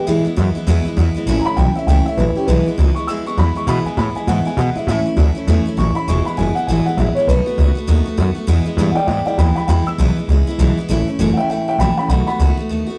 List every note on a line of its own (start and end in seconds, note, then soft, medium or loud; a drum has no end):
0.06 0.25 E2 medium
0.06 0.24 G#2 medium
0.06 0.25 B2 medium
0.06 0.25 E3 medium
0.06 0.26 G#3 loud
0.06 0.24 B3 medium
0.06 0.23 E4 medium
0.06 0.24 G#4 medium
0.25 0.35 E3 soft
0.25 0.37 G#3 soft
0.25 0.37 B3 medium
0.25 0.37 E4 medium
0.25 muted upright bass stroke soft
0.36 0.54 F#2 loud
0.36 0.55 E3 medium
0.36 0.56 G#3 medium
0.36 0.55 B3 medium
0.36 0.54 E4 medium
0.55 0.67 E3 soft
0.55 0.67 G#3 medium
0.55 0.68 B3 medium
0.55 0.67 E4 medium
0.55 muted upright bass stroke medium
0.67 0.85 E2 medium
0.67 0.84 E2 medium
0.67 0.85 B2 medium
0.67 0.86 E3 loud
0.67 0.86 G#3 medium
0.67 0.85 B3 loud
0.67 0.84 E4 loud
0.85 0.95 E3 medium
0.85 0.97 G#3 medium
0.85 0.98 B3 medium
0.85 0.97 E4 medium
0.85 muted upright bass stroke medium
0.97 1.14 E2 loud
0.97 1.15 E3 medium
0.97 1.16 G#3 medium
0.97 1.14 B3 medium
0.97 1.13 E4 medium
1.15 1.26 E3 medium
1.15 1.28 G#3 medium
1.15 1.28 B3 medium
1.15 1.27 E4 medium
1.15 muted upright bass stroke medium
1.26 1.44 A1 medium
1.26 1.45 A2 loud
1.26 1.45 E3 medium
1.26 1.46 A3 loud
1.26 1.45 C#4 loud
1.26 1.44 E4 loud
1.41 1.43 A#5 medium
1.45 1.57 A3 soft
1.45 1.58 C#4 medium
1.45 1.57 E4 medium
1.45 1.57 B5 loud
1.45 muted upright bass stroke medium
1.56 1.74 B1 loud
1.56 1.75 E3 medium
1.56 1.76 A3 medium
1.56 1.76 C#4 medium
1.56 1.74 E4 medium
1.56 1.74 G5 medium
1.75 1.88 A3 soft
1.75 1.88 C#4 medium
1.75 1.87 E4 medium
1.75 1.87 E5 medium
1.75 muted upright bass stroke medium
1.86 2.04 C#2 medium
1.86 2.06 A2 medium
1.86 2.06 E3 medium
1.86 2.06 A3 medium
1.86 2.07 C#4 medium
1.86 2.05 E4 medium
1.86 2.05 G5 medium
2.05 2.17 A3 soft
2.05 2.19 C#4 soft
2.05 2.18 E4 medium
2.05 2.17 E5 loud
2.05 muted upright bass stroke medium
2.17 2.35 A1 loud
2.17 2.36 E3 medium
2.17 2.36 A3 medium
2.17 2.36 C#4 medium
2.17 2.34 E4 medium
2.17 2.35 B4 medium
2.35 2.49 A3 soft
2.35 2.48 C#4 medium
2.35 2.48 E4 medium
2.35 2.47 G4 medium
2.35 muted upright bass stroke medium
2.47 2.65 B1 medium
2.47 2.66 E2 medium
2.47 2.66 B2 medium
2.47 2.66 E3 medium
2.47 2.66 G#3 medium
2.47 2.66 B3 medium
2.47 2.65 E4 medium
2.47 2.65 B4 loud
2.66 2.76 E3 soft
2.66 2.78 G#3 soft
2.66 2.78 B3 medium
2.66 2.78 E4 medium
2.66 muted upright bass stroke medium
2.78 2.95 C#2 loud
2.78 2.96 E3 medium
2.78 2.96 G#3 medium
2.78 2.96 B3 medium
2.78 2.95 E4 medium
2.95 3.09 G#3 soft
2.95 3.08 B3 medium
2.95 3.08 E4 medium
2.95 3.07 C#6 medium
2.95 muted upright bass stroke medium
2.99 3.08 E3 soft
3.07 3.24 D2 medium
3.07 3.26 E2 medium
3.07 3.26 B2 medium
3.07 3.27 E3 medium
3.07 3.27 G#3 medium
3.07 3.26 B3 medium
3.07 3.25 E4 medium
3.07 3.25 E6 medium
3.26 3.36 E3 soft
3.26 3.37 G#3 soft
3.26 3.38 B3 medium
3.26 3.38 E4 soft
3.26 3.38 C#6 medium
3.26 muted upright bass stroke soft
3.37 3.55 E2 medium
3.37 3.56 E3 medium
3.37 3.56 G#3 medium
3.37 3.55 B3 medium
3.37 3.54 E4 medium
3.37 3.55 B5 loud
3.55 3.67 E3 soft
3.55 3.67 G#3 soft
3.55 3.68 B3 soft
3.55 3.67 E4 medium
3.55 3.68 C#6 medium
3.55 muted upright bass stroke medium
3.67 3.85 E2 medium
3.67 3.84 B2 medium
3.67 3.86 B2 medium
3.67 3.86 E3 medium
3.67 3.86 G#3 medium
3.67 3.85 B3 medium
3.67 3.83 E4 medium
3.67 3.85 B5 loud
3.85 3.96 E3 medium
3.85 3.97 G#3 soft
3.85 3.98 B3 soft
3.85 3.97 E4 medium
3.85 3.97 G#5 medium
3.85 muted upright bass stroke medium
3.97 4.14 A2 loud
3.97 4.15 E3 medium
3.97 4.16 G#3 medium
3.97 4.15 B3 medium
3.97 4.14 E4 medium
3.97 4.15 B5 loud
4.15 4.27 E3 soft
4.15 4.27 G#3 medium
4.15 4.28 B3 soft
4.15 4.27 E4 medium
4.15 4.27 G#5 medium
4.15 muted upright bass stroke medium
4.27 4.46 E2 medium
4.27 4.44 G#2 medium
4.27 4.46 B2 medium
4.27 4.46 E3 medium
4.27 4.46 G#3 medium
4.27 4.46 B3 medium
4.27 4.44 E4 medium
4.27 4.45 F#5 medium
4.45 4.56 E3 soft
4.45 4.57 G#3 soft
4.45 4.58 B3 medium
4.45 4.58 E4 medium
4.45 4.58 G#5 loud
4.45 muted upright bass stroke medium
4.57 4.75 B2 loud
4.57 4.76 E3 medium
4.57 4.76 G#3 medium
4.57 4.76 B3 medium
4.57 4.74 E4 medium
4.57 4.75 F#5 medium
4.75 4.88 E3 soft
4.75 4.89 G#3 soft
4.75 4.88 B3 medium
4.75 4.88 E4 medium
4.75 4.86 E5 medium
4.75 muted upright bass stroke medium
4.87 5.04 A2 medium
4.87 5.06 A2 medium
4.87 5.06 E3 medium
4.87 5.07 A3 medium
4.87 5.06 C#4 medium
4.87 5.04 E4 loud
4.87 5.46 E5 loud
5.05 5.17 A3 soft
5.05 5.18 C#4 soft
5.05 5.18 E4 medium
5.05 muted upright bass stroke medium
5.17 5.34 D2 loud
5.17 5.35 E3 medium
5.17 5.36 A3 medium
5.17 5.35 C#4 medium
5.17 5.34 E4 medium
5.35 5.47 A3 medium
5.35 5.48 C#4 medium
5.35 5.47 E4 medium
5.35 muted upright bass stroke medium
5.47 5.64 E2 medium
5.47 5.66 A2 medium
5.47 5.66 E3 medium
5.47 5.66 A3 medium
5.47 5.66 C#4 loud
5.47 5.64 E4 medium
5.65 5.77 A3 medium
5.65 5.78 C#4 medium
5.65 5.78 E4 medium
5.65 muted upright bass stroke medium
5.77 5.95 A1 medium
5.77 5.95 E3 medium
5.77 5.96 A3 medium
5.77 5.96 C#4 medium
5.77 5.94 E4 medium
5.77 5.95 C#6 medium
5.95 6.09 A3 soft
5.95 6.08 C#4 medium
5.95 6.07 E4 medium
5.95 6.07 B5 medium
5.95 muted upright bass stroke medium
6.08 6.25 E1 medium
6.08 6.26 E2 medium
6.08 6.26 B2 medium
6.08 6.26 E3 medium
6.08 6.27 G#3 medium
6.08 6.26 B3 medium
6.08 6.24 E4 medium
6.08 6.25 C#6 medium
6.25 6.36 E3 soft
6.25 6.37 G#3 medium
6.25 6.38 B3 medium
6.25 6.38 E4 soft
6.25 6.37 B5 medium
6.25 muted upright bass stroke medium
6.37 6.55 F#1 loud
6.37 6.56 E3 medium
6.37 6.56 G#3 medium
6.37 6.56 B3 medium
6.37 6.55 E4 medium
6.37 6.55 G#5 loud
6.55 6.69 G#3 soft
6.55 6.69 B3 medium
6.55 6.68 E4 medium
6.55 6.67 F#5 loud
6.55 muted upright bass stroke medium
6.59 6.68 E3 soft
6.67 6.85 G#1 medium
6.67 6.86 E2 medium
6.67 6.87 B2 medium
6.67 6.87 E3 medium
6.67 6.87 G#3 medium
6.67 6.86 B3 medium
6.67 6.85 E4 medium
6.67 6.85 G#5 medium
6.85 6.97 E3 soft
6.85 6.98 G#3 soft
6.85 6.99 B3 medium
6.85 6.98 E4 medium
6.85 6.97 F#5 medium
6.85 muted upright bass stroke medium
6.97 7.14 A1 loud
6.97 7.16 E3 medium
6.97 7.16 G#3 medium
6.97 7.16 B3 medium
6.97 7.15 E4 medium
6.97 7.15 E5 medium
7.15 7.29 B3 medium
7.15 7.28 E4 medium
7.15 7.27 C#5 medium
7.15 muted upright bass stroke medium
7.19 7.29 E3 soft
7.19 7.29 G#3 medium
7.27 7.45 B1 medium
7.27 7.46 B2 medium
7.27 7.47 D#3 medium
7.27 7.47 A3 medium
7.27 7.46 B3 medium
7.27 7.45 F#4 loud
7.27 7.86 B4 loud
7.46 7.58 A3 soft
7.46 7.59 B3 medium
7.46 7.58 F#4 medium
7.46 muted upright bass stroke medium
7.58 7.75 C#2 loud
7.58 7.76 D#3 medium
7.58 7.77 A3 medium
7.58 7.76 B3 medium
7.58 7.74 F#4 medium
7.75 7.87 A3 medium
7.75 7.88 B3 medium
7.75 7.88 F#4 medium
7.75 muted upright bass stroke medium
7.87 8.05 D#2 medium
7.87 8.06 B2 medium
7.87 8.06 D#3 medium
7.87 8.06 A3 medium
7.87 8.06 B3 medium
7.87 8.04 F#4 medium
8.06 8.17 A3 medium
8.06 8.18 B3 medium
8.06 8.18 F#4 medium
8.06 muted upright bass stroke medium
8.17 8.35 F#2 loud
8.17 8.36 D#3 medium
8.17 8.36 A3 medium
8.17 8.35 B3 medium
8.17 8.34 F#4 medium
8.35 8.48 A3 soft
8.35 8.47 B3 medium
8.35 8.48 F#4 medium
8.35 muted upright bass stroke medium
8.47 8.66 E2 medium
8.47 8.64 E2 medium
8.47 8.66 B2 medium
8.47 8.66 E3 medium
8.47 8.65 G#3 loud
8.47 8.64 B3 loud
8.47 8.63 E4 medium
8.64 8.78 E3 soft
8.64 8.78 G#3 medium
8.64 8.78 B3 medium
8.64 8.77 E4 medium
8.64 muted upright bass stroke medium
8.77 8.96 E2 medium
8.77 8.95 G2 loud
8.77 8.96 B2 medium
8.77 8.97 E3 medium
8.77 8.97 G#3 medium
8.77 8.96 B3 medium
8.77 8.94 E4 medium
8.91 8.93 F#5 medium
8.95 9.06 E3 soft
8.95 9.08 G#3 soft
8.95 9.08 B3 soft
8.95 9.08 E4 medium
8.95 9.06 D5 medium
8.95 9.06 G5 loud
8.95 muted upright bass stroke medium
9.07 9.24 G#2 medium
9.07 9.26 E3 medium
9.07 9.27 G#3 medium
9.07 9.26 B3 medium
9.07 9.24 E4 medium
9.07 9.25 D5 medium
9.07 9.25 G5 medium
9.25 9.38 G#3 medium
9.25 9.39 B3 soft
9.25 9.38 E4 medium
9.25 9.37 D5 medium
9.25 9.36 G5 medium
9.25 muted upright bass stroke medium
9.29 9.38 E3 soft
9.38 9.55 D#2 medium
9.38 9.57 E2 medium
9.38 9.57 B2 medium
9.38 9.57 E3 medium
9.38 9.57 G#3 medium
9.38 9.56 B3 medium
9.38 9.55 E4 medium
9.38 9.54 G5 medium
9.38 9.55 B5 medium
9.55 9.69 G#3 soft
9.55 9.69 B3 soft
9.55 9.68 E4 medium
9.55 9.66 G5 medium
9.55 9.67 B5 medium
9.55 muted upright bass stroke medium
9.60 9.68 E3 soft
9.67 9.86 E2 medium
9.67 9.87 B2 medium
9.67 9.87 E3 medium
9.67 9.87 G#3 medium
9.67 9.86 B3 medium
9.67 9.85 E4 medium
9.67 9.85 G5 medium
9.67 9.86 B5 medium
9.86 9.98 E3 soft
9.86 9.99 G#3 soft
9.86 9.99 B3 medium
9.86 9.98 E4 medium
9.86 10.16 E6 medium
9.86 muted upright bass stroke medium
9.98 10.15 B1 medium
9.98 10.17 E2 medium
9.98 10.17 B2 medium
9.98 10.17 E3 medium
9.98 10.17 G#3 medium
9.98 10.17 B3 medium
9.98 10.15 E4 loud
10.16 10.28 E3 soft
10.16 10.29 G#3 soft
10.16 10.29 B3 soft
10.16 10.29 E4 medium
10.16 muted upright bass stroke medium
10.28 10.46 C#2 medium
10.28 10.47 E3 medium
10.28 10.48 G#3 medium
10.28 10.47 B3 medium
10.32 10.46 E4 medium
10.47 10.59 E3 medium
10.47 10.59 G#3 soft
10.47 10.60 B3 medium
10.47 10.59 E4 medium
10.47 muted upright bass stroke medium
10.58 10.76 B1 loud
10.58 10.77 E2 medium
10.58 10.77 B2 loud
10.58 10.77 E3 loud
10.58 10.78 G#3 loud
10.58 10.78 B3 loud
10.58 10.76 E4 medium
10.77 10.90 G#3 soft
10.77 10.90 B3 medium
10.77 10.89 E4 medium
10.77 muted upright bass stroke medium
10.81 10.88 E3 medium
10.89 11.06 A1 medium
10.89 11.07 A2 medium
10.89 11.07 E3 medium
10.89 11.08 A3 medium
10.89 11.07 C#4 medium
10.89 11.06 E4 loud
11.07 11.19 A3 soft
11.07 11.19 C#4 medium
11.07 11.19 E4 medium
11.07 muted upright bass stroke medium
11.19 11.36 F#1 loud
11.19 11.37 A2 loud
11.19 11.37 E3 medium
11.19 11.38 A3 loud
11.19 11.38 C#4 loud
11.19 11.36 E4 loud
11.33 11.35 F#5 medium
11.37 11.50 A3 soft
11.37 11.50 C#4 soft
11.37 11.49 E4 medium
11.37 11.48 E5 medium
11.37 11.49 G5 loud
11.37 muted upright bass stroke medium
11.48 11.65 G#1 medium
11.48 11.68 E3 medium
11.48 11.68 A3 medium
11.48 11.68 C#4 medium
11.48 11.66 E5 medium
11.48 11.67 G5 medium
11.53 11.67 E4 medium
11.66 11.80 C#4 soft
11.66 11.80 E4 medium
11.66 11.79 E5 medium
11.66 11.77 G5 loud
11.66 muted upright bass stroke soft
11.71 11.80 A3 soft
11.78 11.96 A#1 loud
11.78 11.98 A2 medium
11.78 11.98 E3 medium
11.78 11.98 A3 medium
11.78 11.98 C#4 medium
11.78 11.96 E4 medium
11.78 11.96 G5 medium
11.78 11.96 B5 medium
11.96 12.10 A3 soft
11.96 12.10 C#4 soft
11.96 12.09 E4 soft
11.96 12.08 G5 medium
11.96 12.07 B5 medium
11.96 muted upright bass stroke medium
12.08 12.26 B1 medium
12.08 12.27 B2 medium
12.08 12.28 D#3 medium
12.08 12.28 A3 medium
12.08 12.28 B3 medium
12.08 12.26 F#4 medium
12.08 12.25 F#5 medium
12.08 12.25 B5 medium
12.26 12.39 A3 soft
12.26 12.40 B3 medium
12.26 12.39 F#4 medium
12.26 12.55 F#5 medium
12.26 12.56 B5 loud
12.26 muted upright bass stroke medium
12.39 12.56 C#2 medium
12.39 12.58 B2 medium
12.39 12.58 D#3 medium
12.39 12.58 A3 medium
12.39 12.58 B3 medium
12.39 12.56 F#4 loud
12.57 12.69 A3 soft
12.57 12.70 B3 soft
12.57 12.69 F#4 medium
12.57 muted upright bass stroke medium
12.69 12.86 D#2 medium
12.69 12.87 D#3 medium
12.69 12.88 A3 medium
12.69 12.87 B3 medium
12.69 12.85 F#4 medium
12.87 12.98 A3 medium
12.87 12.98 B3 medium
12.87 12.98 F#4 medium
12.87 muted upright bass stroke soft